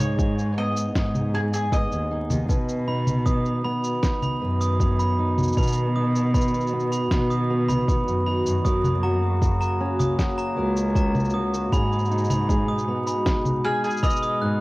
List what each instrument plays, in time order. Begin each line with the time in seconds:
Already playing: cello G#2, steel-string acoustic guitar G#2 D#4 G#4, mandolin C#5
0.00 shaker
0.18 steel-string acoustic guitar G#4, kick, shaker
0.38 shaker
0.57 steel-string acoustic guitar B3, mandolin D#5
0.76 shaker
0.95 cello G#2, steel-string acoustic guitar D#4, kick, snare, shaker
1.15 low conga, shaker
1.34 steel-string acoustic guitar G#4, mandolin G#4
1.54 mandolin G#4, shaker
1.72 steel-string acoustic guitar B3, mandolin D#5, kick, shaker
1.92 cello D#2, shaker
2.11 steel-string acoustic guitar D#4
2.30 cello D#2, low conga, shaker
2.49 cello B2, steel-string acoustic guitar B2 B4, ambient pad D#3 B3 F#4, kick, shaker
2.69 shaker
2.88 steel-string acoustic guitar D#4, glockenspiel B5
3.07 low conga, shaker
3.26 steel-string acoustic guitar B4, glockenspiel D#6, kick, shaker
3.46 shaker
3.65 steel-string acoustic guitar B3, glockenspiel B5
3.84 shaker
4.03 steel-string acoustic guitar D#4, kick, snare, shaker
4.22 glockenspiel B5, low conga, shaker
4.41 cello F#2, steel-string acoustic guitar B4
4.61 glockenspiel D#6, shaker
4.80 steel-string acoustic guitar B3, kick, shaker
4.99 glockenspiel B5, shaker
5.19 steel-string acoustic guitar D#4
5.38 low conga, shaker
5.43 shaker
5.48 shaker
5.52 shaker
5.57 cello B2, steel-string acoustic guitar B2 B4, glockenspiel B5, kick, shaker
5.62 shaker
5.67 shaker
5.72 shaker
5.96 steel-string acoustic guitar D#4, glockenspiel D#6
6.15 shaker
6.34 steel-string acoustic guitar B4, glockenspiel B5, kick, shaker
6.41 shaker
6.47 shaker
6.54 shaker
6.60 shaker
6.67 shaker
6.73 steel-string acoustic guitar B3
6.80 shaker
6.92 glockenspiel B5, shaker
7.11 cello B2, steel-string acoustic guitar D#4, kick, snare, shaker
7.30 glockenspiel D#6, shaker
7.50 steel-string acoustic guitar B4
7.68 glockenspiel B5, low conga, shaker
7.88 steel-string acoustic guitar B3, kick, shaker
8.07 cello F#2, shaker
8.26 steel-string acoustic guitar D#4, glockenspiel B5
8.45 cello F#2, shaker
8.64 cello F#2, ambient pad C#3 A#3, steel-string acoustic guitar F#3 A#4, glockenspiel D#6, kick, shaker
8.84 low conga, shaker
9.03 steel-string acoustic guitar F#4, glockenspiel A#5
9.42 steel-string acoustic guitar A#4, kick, shaker
9.60 glockenspiel A#5, shaker
9.80 steel-string acoustic guitar C#4
9.99 glockenspiel D#6, low conga, shaker
10.19 steel-string acoustic guitar F#4, kick, snare, shaker
10.38 glockenspiel A#5, shaker
10.57 cello C#2, steel-string acoustic guitar A#4
10.77 shaker
10.95 steel-string acoustic guitar C#4, glockenspiel A#5, kick, shaker
11.15 low conga, shaker
11.20 shaker
11.25 shaker
11.30 shaker
11.34 steel-string acoustic guitar F#4, glockenspiel D#6
11.54 shaker
11.72 steel-string acoustic guitar G#2 G#4, cello G#2, ambient pad B2 G#3, glockenspiel B5, kick, shaker
11.92 shaker
11.99 shaker
12.05 shaker
12.11 steel-string acoustic guitar D#4, shaker
12.18 shaker
12.24 shaker
12.30 glockenspiel B5, low conga, shaker
12.49 steel-string acoustic guitar G#4, kick, shaker
12.68 glockenspiel D#6
12.78 shaker
12.88 steel-string acoustic guitar B3
13.07 glockenspiel B5, shaker
13.26 steel-string acoustic guitar D#4, kick, snare, shaker
13.45 low conga, shaker
13.64 mandolin G#4, steel-string acoustic guitar G#4, glockenspiel F6
13.84 mandolin G#4, shaker
13.90 shaker
13.97 shaker
14.03 steel-string acoustic guitar B3, mandolin D#5, glockenspiel B5, kick, shaker
14.10 shaker
14.16 shaker
14.23 glockenspiel D#6, shaker
14.42 cello G#2, steel-string acoustic guitar D#4, glockenspiel F#6